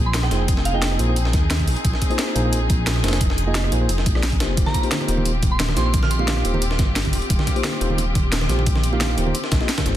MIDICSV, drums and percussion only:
0, 0, Header, 1, 2, 480
1, 0, Start_track
1, 0, Key_signature, -3, "major"
1, 0, Tempo, 340909
1, 679, Time_signature, 4, 2, 24, 8
1, 14032, End_track
2, 0, Start_track
2, 0, Title_t, "Drums"
2, 199, Note_on_c, 9, 38, 119
2, 199, Note_on_c, 9, 42, 94
2, 325, Note_off_c, 9, 38, 0
2, 325, Note_on_c, 9, 38, 55
2, 326, Note_on_c, 9, 37, 54
2, 340, Note_off_c, 9, 42, 0
2, 439, Note_off_c, 9, 38, 0
2, 439, Note_on_c, 9, 38, 51
2, 439, Note_on_c, 9, 42, 68
2, 440, Note_off_c, 9, 42, 0
2, 440, Note_on_c, 9, 42, 66
2, 467, Note_off_c, 9, 37, 0
2, 580, Note_off_c, 9, 38, 0
2, 581, Note_off_c, 9, 42, 0
2, 679, Note_on_c, 9, 42, 90
2, 680, Note_off_c, 9, 42, 0
2, 680, Note_on_c, 9, 36, 118
2, 680, Note_on_c, 9, 42, 92
2, 806, Note_on_c, 9, 38, 53
2, 820, Note_off_c, 9, 36, 0
2, 821, Note_off_c, 9, 42, 0
2, 919, Note_on_c, 9, 42, 69
2, 920, Note_off_c, 9, 42, 0
2, 920, Note_on_c, 9, 42, 70
2, 946, Note_off_c, 9, 38, 0
2, 1061, Note_off_c, 9, 42, 0
2, 1158, Note_on_c, 9, 38, 119
2, 1158, Note_on_c, 9, 42, 85
2, 1159, Note_off_c, 9, 38, 0
2, 1159, Note_off_c, 9, 42, 0
2, 1159, Note_on_c, 9, 38, 118
2, 1159, Note_on_c, 9, 42, 96
2, 1286, Note_on_c, 9, 37, 47
2, 1300, Note_off_c, 9, 38, 0
2, 1300, Note_off_c, 9, 42, 0
2, 1398, Note_on_c, 9, 42, 72
2, 1426, Note_off_c, 9, 37, 0
2, 1539, Note_off_c, 9, 42, 0
2, 1638, Note_on_c, 9, 42, 92
2, 1765, Note_on_c, 9, 38, 53
2, 1779, Note_off_c, 9, 42, 0
2, 1877, Note_off_c, 9, 38, 0
2, 1877, Note_on_c, 9, 38, 41
2, 1877, Note_on_c, 9, 42, 71
2, 1878, Note_off_c, 9, 42, 0
2, 1878, Note_on_c, 9, 42, 66
2, 1880, Note_on_c, 9, 36, 106
2, 2018, Note_off_c, 9, 38, 0
2, 2019, Note_off_c, 9, 42, 0
2, 2020, Note_off_c, 9, 36, 0
2, 2117, Note_on_c, 9, 38, 117
2, 2117, Note_on_c, 9, 42, 91
2, 2118, Note_off_c, 9, 38, 0
2, 2118, Note_off_c, 9, 42, 0
2, 2118, Note_on_c, 9, 38, 117
2, 2118, Note_on_c, 9, 42, 93
2, 2244, Note_off_c, 9, 42, 0
2, 2244, Note_on_c, 9, 42, 43
2, 2246, Note_on_c, 9, 36, 59
2, 2259, Note_off_c, 9, 38, 0
2, 2358, Note_on_c, 9, 46, 86
2, 2360, Note_off_c, 9, 42, 0
2, 2360, Note_on_c, 9, 42, 67
2, 2387, Note_off_c, 9, 36, 0
2, 2485, Note_off_c, 9, 42, 0
2, 2485, Note_on_c, 9, 42, 46
2, 2498, Note_off_c, 9, 46, 0
2, 2598, Note_off_c, 9, 42, 0
2, 2598, Note_on_c, 9, 42, 92
2, 2599, Note_off_c, 9, 42, 0
2, 2599, Note_on_c, 9, 36, 111
2, 2599, Note_on_c, 9, 42, 98
2, 2724, Note_on_c, 9, 38, 39
2, 2740, Note_off_c, 9, 36, 0
2, 2740, Note_off_c, 9, 42, 0
2, 2839, Note_on_c, 9, 36, 60
2, 2839, Note_on_c, 9, 42, 71
2, 2865, Note_off_c, 9, 38, 0
2, 2965, Note_off_c, 9, 42, 0
2, 2965, Note_on_c, 9, 42, 45
2, 2980, Note_off_c, 9, 36, 0
2, 3078, Note_off_c, 9, 42, 0
2, 3078, Note_on_c, 9, 38, 114
2, 3078, Note_on_c, 9, 42, 89
2, 3079, Note_off_c, 9, 38, 0
2, 3079, Note_off_c, 9, 42, 0
2, 3079, Note_on_c, 9, 38, 120
2, 3079, Note_on_c, 9, 42, 95
2, 3207, Note_on_c, 9, 37, 46
2, 3220, Note_off_c, 9, 38, 0
2, 3220, Note_off_c, 9, 42, 0
2, 3318, Note_on_c, 9, 42, 72
2, 3319, Note_off_c, 9, 42, 0
2, 3319, Note_on_c, 9, 42, 73
2, 3347, Note_off_c, 9, 37, 0
2, 3460, Note_off_c, 9, 42, 0
2, 3557, Note_on_c, 9, 42, 91
2, 3559, Note_off_c, 9, 42, 0
2, 3559, Note_on_c, 9, 42, 100
2, 3700, Note_off_c, 9, 42, 0
2, 3797, Note_on_c, 9, 42, 70
2, 3799, Note_off_c, 9, 42, 0
2, 3799, Note_on_c, 9, 36, 107
2, 3799, Note_on_c, 9, 42, 67
2, 3939, Note_off_c, 9, 36, 0
2, 3940, Note_off_c, 9, 42, 0
2, 4038, Note_on_c, 9, 38, 115
2, 4038, Note_on_c, 9, 42, 91
2, 4164, Note_on_c, 9, 37, 55
2, 4166, Note_off_c, 9, 38, 0
2, 4166, Note_on_c, 9, 38, 55
2, 4179, Note_off_c, 9, 42, 0
2, 4278, Note_on_c, 9, 42, 70
2, 4279, Note_off_c, 9, 38, 0
2, 4279, Note_off_c, 9, 42, 0
2, 4279, Note_on_c, 9, 38, 92
2, 4279, Note_on_c, 9, 42, 66
2, 4305, Note_off_c, 9, 37, 0
2, 4342, Note_off_c, 9, 38, 0
2, 4342, Note_off_c, 9, 42, 0
2, 4342, Note_on_c, 9, 38, 94
2, 4342, Note_on_c, 9, 42, 70
2, 4405, Note_off_c, 9, 38, 0
2, 4405, Note_off_c, 9, 42, 0
2, 4405, Note_on_c, 9, 38, 109
2, 4405, Note_on_c, 9, 42, 83
2, 4517, Note_off_c, 9, 42, 0
2, 4517, Note_on_c, 9, 42, 96
2, 4518, Note_on_c, 9, 36, 119
2, 4519, Note_off_c, 9, 42, 0
2, 4519, Note_on_c, 9, 42, 91
2, 4546, Note_off_c, 9, 38, 0
2, 4646, Note_on_c, 9, 38, 55
2, 4659, Note_off_c, 9, 36, 0
2, 4660, Note_off_c, 9, 42, 0
2, 4758, Note_on_c, 9, 42, 71
2, 4759, Note_off_c, 9, 42, 0
2, 4759, Note_on_c, 9, 42, 70
2, 4787, Note_off_c, 9, 38, 0
2, 4900, Note_off_c, 9, 42, 0
2, 4998, Note_on_c, 9, 38, 118
2, 4998, Note_on_c, 9, 42, 95
2, 5000, Note_off_c, 9, 38, 0
2, 5000, Note_off_c, 9, 42, 0
2, 5000, Note_on_c, 9, 38, 113
2, 5000, Note_on_c, 9, 42, 87
2, 5125, Note_on_c, 9, 37, 50
2, 5140, Note_off_c, 9, 38, 0
2, 5140, Note_off_c, 9, 42, 0
2, 5238, Note_on_c, 9, 42, 71
2, 5240, Note_off_c, 9, 42, 0
2, 5240, Note_on_c, 9, 42, 72
2, 5266, Note_off_c, 9, 37, 0
2, 5381, Note_off_c, 9, 42, 0
2, 5479, Note_on_c, 9, 42, 96
2, 5480, Note_off_c, 9, 42, 0
2, 5480, Note_on_c, 9, 42, 89
2, 5606, Note_on_c, 9, 38, 52
2, 5620, Note_off_c, 9, 42, 0
2, 5718, Note_on_c, 9, 42, 70
2, 5719, Note_on_c, 9, 36, 108
2, 5720, Note_off_c, 9, 42, 0
2, 5720, Note_on_c, 9, 42, 84
2, 5747, Note_off_c, 9, 38, 0
2, 5846, Note_on_c, 9, 37, 58
2, 5847, Note_on_c, 9, 38, 36
2, 5860, Note_off_c, 9, 36, 0
2, 5861, Note_off_c, 9, 42, 0
2, 5959, Note_off_c, 9, 38, 0
2, 5959, Note_on_c, 9, 38, 116
2, 5959, Note_on_c, 9, 42, 101
2, 5961, Note_off_c, 9, 42, 0
2, 5961, Note_on_c, 9, 42, 64
2, 5987, Note_off_c, 9, 37, 0
2, 6087, Note_on_c, 9, 36, 60
2, 6088, Note_off_c, 9, 42, 0
2, 6088, Note_on_c, 9, 42, 40
2, 6100, Note_off_c, 9, 38, 0
2, 6199, Note_off_c, 9, 42, 0
2, 6199, Note_on_c, 9, 42, 72
2, 6200, Note_off_c, 9, 42, 0
2, 6200, Note_on_c, 9, 38, 108
2, 6200, Note_on_c, 9, 42, 81
2, 6227, Note_off_c, 9, 36, 0
2, 6341, Note_off_c, 9, 38, 0
2, 6341, Note_off_c, 9, 42, 0
2, 6439, Note_on_c, 9, 42, 97
2, 6440, Note_off_c, 9, 42, 0
2, 6440, Note_on_c, 9, 36, 122
2, 6440, Note_on_c, 9, 42, 90
2, 6567, Note_on_c, 9, 38, 40
2, 6568, Note_on_c, 9, 63, 100
2, 6580, Note_off_c, 9, 42, 0
2, 6581, Note_off_c, 9, 36, 0
2, 6680, Note_on_c, 9, 36, 62
2, 6680, Note_on_c, 9, 42, 71
2, 6685, Note_on_c, 9, 62, 58
2, 6707, Note_off_c, 9, 38, 0
2, 6709, Note_off_c, 9, 63, 0
2, 6806, Note_off_c, 9, 42, 0
2, 6806, Note_on_c, 9, 42, 46
2, 6821, Note_off_c, 9, 36, 0
2, 6826, Note_off_c, 9, 62, 0
2, 6919, Note_off_c, 9, 42, 0
2, 6919, Note_on_c, 9, 38, 118
2, 6919, Note_on_c, 9, 42, 86
2, 6920, Note_off_c, 9, 38, 0
2, 6920, Note_off_c, 9, 42, 0
2, 6920, Note_on_c, 9, 38, 123
2, 6920, Note_on_c, 9, 42, 99
2, 6925, Note_on_c, 9, 63, 68
2, 7046, Note_on_c, 9, 37, 48
2, 7052, Note_on_c, 9, 62, 88
2, 7061, Note_off_c, 9, 38, 0
2, 7061, Note_off_c, 9, 42, 0
2, 7066, Note_off_c, 9, 63, 0
2, 7159, Note_on_c, 9, 42, 71
2, 7160, Note_off_c, 9, 42, 0
2, 7160, Note_on_c, 9, 42, 75
2, 7187, Note_off_c, 9, 37, 0
2, 7193, Note_off_c, 9, 62, 0
2, 7283, Note_on_c, 9, 63, 100
2, 7301, Note_off_c, 9, 42, 0
2, 7398, Note_on_c, 9, 42, 92
2, 7400, Note_off_c, 9, 42, 0
2, 7400, Note_on_c, 9, 42, 98
2, 7424, Note_off_c, 9, 63, 0
2, 7529, Note_on_c, 9, 62, 50
2, 7541, Note_off_c, 9, 42, 0
2, 7636, Note_on_c, 9, 63, 70
2, 7640, Note_on_c, 9, 36, 113
2, 7640, Note_on_c, 9, 42, 71
2, 7670, Note_off_c, 9, 62, 0
2, 7777, Note_off_c, 9, 63, 0
2, 7780, Note_off_c, 9, 36, 0
2, 7781, Note_off_c, 9, 42, 0
2, 7879, Note_on_c, 9, 38, 123
2, 7879, Note_on_c, 9, 42, 89
2, 7880, Note_off_c, 9, 38, 0
2, 7880, Note_off_c, 9, 42, 0
2, 7880, Note_on_c, 9, 38, 118
2, 7880, Note_on_c, 9, 42, 99
2, 7884, Note_on_c, 9, 62, 84
2, 8003, Note_on_c, 9, 63, 107
2, 8006, Note_off_c, 9, 38, 0
2, 8006, Note_on_c, 9, 37, 58
2, 8006, Note_on_c, 9, 38, 55
2, 8021, Note_off_c, 9, 42, 0
2, 8025, Note_off_c, 9, 62, 0
2, 8119, Note_on_c, 9, 42, 74
2, 8120, Note_off_c, 9, 38, 0
2, 8120, Note_off_c, 9, 42, 0
2, 8120, Note_on_c, 9, 38, 52
2, 8120, Note_on_c, 9, 42, 72
2, 8144, Note_off_c, 9, 63, 0
2, 8147, Note_off_c, 9, 37, 0
2, 8260, Note_off_c, 9, 38, 0
2, 8260, Note_off_c, 9, 42, 0
2, 8358, Note_on_c, 9, 42, 90
2, 8359, Note_on_c, 9, 36, 124
2, 8360, Note_off_c, 9, 42, 0
2, 8360, Note_on_c, 9, 42, 93
2, 8366, Note_on_c, 9, 62, 57
2, 8486, Note_on_c, 9, 38, 55
2, 8500, Note_off_c, 9, 36, 0
2, 8501, Note_off_c, 9, 42, 0
2, 8501, Note_on_c, 9, 63, 104
2, 8507, Note_off_c, 9, 62, 0
2, 8599, Note_on_c, 9, 42, 73
2, 8600, Note_off_c, 9, 42, 0
2, 8600, Note_on_c, 9, 42, 69
2, 8627, Note_off_c, 9, 38, 0
2, 8642, Note_off_c, 9, 63, 0
2, 8720, Note_on_c, 9, 62, 81
2, 8741, Note_off_c, 9, 42, 0
2, 8838, Note_on_c, 9, 38, 118
2, 8838, Note_on_c, 9, 42, 86
2, 8839, Note_off_c, 9, 38, 0
2, 8839, Note_off_c, 9, 42, 0
2, 8839, Note_on_c, 9, 38, 127
2, 8839, Note_on_c, 9, 42, 99
2, 8846, Note_on_c, 9, 63, 66
2, 8861, Note_off_c, 9, 62, 0
2, 8967, Note_on_c, 9, 37, 51
2, 8980, Note_off_c, 9, 38, 0
2, 8980, Note_off_c, 9, 42, 0
2, 8987, Note_off_c, 9, 63, 0
2, 9079, Note_on_c, 9, 42, 70
2, 9108, Note_off_c, 9, 37, 0
2, 9205, Note_on_c, 9, 63, 96
2, 9212, Note_on_c, 9, 62, 59
2, 9220, Note_off_c, 9, 42, 0
2, 9318, Note_on_c, 9, 42, 93
2, 9319, Note_off_c, 9, 42, 0
2, 9319, Note_on_c, 9, 42, 98
2, 9346, Note_off_c, 9, 63, 0
2, 9353, Note_off_c, 9, 62, 0
2, 9445, Note_on_c, 9, 38, 53
2, 9460, Note_off_c, 9, 42, 0
2, 9558, Note_off_c, 9, 38, 0
2, 9558, Note_on_c, 9, 38, 42
2, 9558, Note_on_c, 9, 42, 69
2, 9559, Note_off_c, 9, 42, 0
2, 9559, Note_on_c, 9, 42, 66
2, 9559, Note_on_c, 9, 62, 92
2, 9560, Note_on_c, 9, 36, 117
2, 9562, Note_on_c, 9, 63, 64
2, 9699, Note_off_c, 9, 38, 0
2, 9700, Note_off_c, 9, 36, 0
2, 9700, Note_off_c, 9, 42, 0
2, 9700, Note_off_c, 9, 62, 0
2, 9703, Note_off_c, 9, 63, 0
2, 9798, Note_on_c, 9, 38, 120
2, 9798, Note_on_c, 9, 42, 91
2, 9800, Note_off_c, 9, 38, 0
2, 9800, Note_off_c, 9, 42, 0
2, 9800, Note_on_c, 9, 38, 127
2, 9800, Note_on_c, 9, 42, 93
2, 9925, Note_off_c, 9, 42, 0
2, 9925, Note_on_c, 9, 42, 43
2, 9926, Note_on_c, 9, 36, 64
2, 9931, Note_on_c, 9, 63, 103
2, 9941, Note_off_c, 9, 38, 0
2, 10038, Note_off_c, 9, 42, 0
2, 10038, Note_on_c, 9, 42, 71
2, 10038, Note_on_c, 9, 46, 83
2, 10049, Note_on_c, 9, 62, 54
2, 10067, Note_off_c, 9, 36, 0
2, 10072, Note_off_c, 9, 63, 0
2, 10165, Note_off_c, 9, 42, 0
2, 10165, Note_on_c, 9, 42, 46
2, 10179, Note_off_c, 9, 46, 0
2, 10190, Note_off_c, 9, 62, 0
2, 10278, Note_off_c, 9, 42, 0
2, 10278, Note_on_c, 9, 42, 92
2, 10279, Note_off_c, 9, 42, 0
2, 10279, Note_on_c, 9, 36, 127
2, 10279, Note_on_c, 9, 42, 90
2, 10403, Note_on_c, 9, 62, 81
2, 10406, Note_on_c, 9, 38, 41
2, 10410, Note_on_c, 9, 63, 102
2, 10420, Note_off_c, 9, 36, 0
2, 10420, Note_off_c, 9, 42, 0
2, 10518, Note_on_c, 9, 42, 73
2, 10519, Note_off_c, 9, 42, 0
2, 10519, Note_on_c, 9, 36, 67
2, 10519, Note_on_c, 9, 42, 67
2, 10544, Note_off_c, 9, 62, 0
2, 10547, Note_off_c, 9, 38, 0
2, 10551, Note_off_c, 9, 63, 0
2, 10646, Note_off_c, 9, 42, 0
2, 10646, Note_on_c, 9, 42, 46
2, 10660, Note_off_c, 9, 36, 0
2, 10751, Note_on_c, 9, 63, 68
2, 10759, Note_off_c, 9, 42, 0
2, 10759, Note_on_c, 9, 38, 127
2, 10759, Note_on_c, 9, 42, 96
2, 10881, Note_on_c, 9, 62, 55
2, 10886, Note_on_c, 9, 37, 49
2, 10892, Note_off_c, 9, 63, 0
2, 10899, Note_off_c, 9, 38, 0
2, 10899, Note_off_c, 9, 42, 0
2, 10999, Note_on_c, 9, 42, 73
2, 11022, Note_off_c, 9, 62, 0
2, 11027, Note_off_c, 9, 37, 0
2, 11123, Note_on_c, 9, 63, 95
2, 11140, Note_off_c, 9, 42, 0
2, 11240, Note_on_c, 9, 42, 92
2, 11240, Note_on_c, 9, 62, 88
2, 11264, Note_off_c, 9, 63, 0
2, 11380, Note_off_c, 9, 42, 0
2, 11380, Note_off_c, 9, 62, 0
2, 11479, Note_on_c, 9, 42, 72
2, 11479, Note_on_c, 9, 63, 66
2, 11480, Note_off_c, 9, 42, 0
2, 11480, Note_on_c, 9, 36, 118
2, 11480, Note_on_c, 9, 42, 64
2, 11620, Note_off_c, 9, 42, 0
2, 11620, Note_off_c, 9, 63, 0
2, 11621, Note_off_c, 9, 36, 0
2, 11719, Note_on_c, 9, 38, 121
2, 11719, Note_on_c, 9, 42, 90
2, 11720, Note_off_c, 9, 38, 0
2, 11720, Note_off_c, 9, 42, 0
2, 11720, Note_on_c, 9, 38, 127
2, 11720, Note_on_c, 9, 42, 91
2, 11731, Note_on_c, 9, 62, 51
2, 11846, Note_off_c, 9, 38, 0
2, 11846, Note_on_c, 9, 38, 56
2, 11847, Note_on_c, 9, 37, 57
2, 11851, Note_on_c, 9, 63, 93
2, 11860, Note_off_c, 9, 42, 0
2, 11872, Note_off_c, 9, 62, 0
2, 11960, Note_off_c, 9, 38, 0
2, 11960, Note_on_c, 9, 38, 51
2, 11960, Note_on_c, 9, 42, 71
2, 11987, Note_off_c, 9, 37, 0
2, 11991, Note_off_c, 9, 63, 0
2, 12092, Note_on_c, 9, 62, 84
2, 12101, Note_off_c, 9, 38, 0
2, 12101, Note_off_c, 9, 42, 0
2, 12200, Note_on_c, 9, 36, 127
2, 12200, Note_on_c, 9, 42, 92
2, 12233, Note_off_c, 9, 62, 0
2, 12327, Note_on_c, 9, 63, 89
2, 12328, Note_on_c, 9, 38, 52
2, 12341, Note_off_c, 9, 36, 0
2, 12341, Note_off_c, 9, 42, 0
2, 12439, Note_on_c, 9, 42, 72
2, 12441, Note_off_c, 9, 42, 0
2, 12441, Note_on_c, 9, 42, 62
2, 12468, Note_off_c, 9, 38, 0
2, 12468, Note_off_c, 9, 63, 0
2, 12568, Note_on_c, 9, 62, 53
2, 12581, Note_off_c, 9, 42, 0
2, 12681, Note_on_c, 9, 38, 127
2, 12681, Note_on_c, 9, 42, 90
2, 12684, Note_on_c, 9, 63, 63
2, 12709, Note_off_c, 9, 62, 0
2, 12808, Note_on_c, 9, 37, 46
2, 12822, Note_off_c, 9, 38, 0
2, 12822, Note_off_c, 9, 42, 0
2, 12824, Note_off_c, 9, 63, 0
2, 12920, Note_on_c, 9, 42, 69
2, 12921, Note_off_c, 9, 42, 0
2, 12921, Note_on_c, 9, 42, 68
2, 12924, Note_on_c, 9, 62, 81
2, 12949, Note_off_c, 9, 37, 0
2, 13047, Note_on_c, 9, 63, 93
2, 13062, Note_off_c, 9, 42, 0
2, 13064, Note_off_c, 9, 62, 0
2, 13160, Note_on_c, 9, 42, 92
2, 13162, Note_off_c, 9, 42, 0
2, 13162, Note_on_c, 9, 42, 90
2, 13188, Note_off_c, 9, 63, 0
2, 13287, Note_on_c, 9, 38, 53
2, 13303, Note_off_c, 9, 42, 0
2, 13400, Note_off_c, 9, 38, 0
2, 13400, Note_on_c, 9, 38, 112
2, 13400, Note_on_c, 9, 42, 83
2, 13401, Note_off_c, 9, 42, 0
2, 13401, Note_on_c, 9, 36, 117
2, 13401, Note_on_c, 9, 42, 63
2, 13402, Note_on_c, 9, 63, 64
2, 13409, Note_on_c, 9, 62, 59
2, 13526, Note_off_c, 9, 38, 0
2, 13526, Note_on_c, 9, 38, 51
2, 13542, Note_off_c, 9, 36, 0
2, 13542, Note_off_c, 9, 42, 0
2, 13543, Note_off_c, 9, 63, 0
2, 13550, Note_off_c, 9, 62, 0
2, 13640, Note_off_c, 9, 38, 0
2, 13640, Note_on_c, 9, 38, 48
2, 13640, Note_on_c, 9, 42, 62
2, 13641, Note_off_c, 9, 38, 0
2, 13641, Note_off_c, 9, 42, 0
2, 13641, Note_on_c, 9, 38, 124
2, 13641, Note_on_c, 9, 42, 88
2, 13763, Note_on_c, 9, 62, 79
2, 13766, Note_on_c, 9, 63, 99
2, 13767, Note_off_c, 9, 38, 0
2, 13767, Note_off_c, 9, 42, 0
2, 13767, Note_on_c, 9, 38, 109
2, 13767, Note_on_c, 9, 42, 81
2, 13768, Note_on_c, 9, 36, 64
2, 13880, Note_off_c, 9, 38, 0
2, 13880, Note_off_c, 9, 42, 0
2, 13880, Note_on_c, 9, 38, 51
2, 13880, Note_on_c, 9, 42, 65
2, 13904, Note_off_c, 9, 62, 0
2, 13907, Note_off_c, 9, 63, 0
2, 13908, Note_off_c, 9, 36, 0
2, 14021, Note_off_c, 9, 38, 0
2, 14021, Note_off_c, 9, 42, 0
2, 14032, End_track
0, 0, End_of_file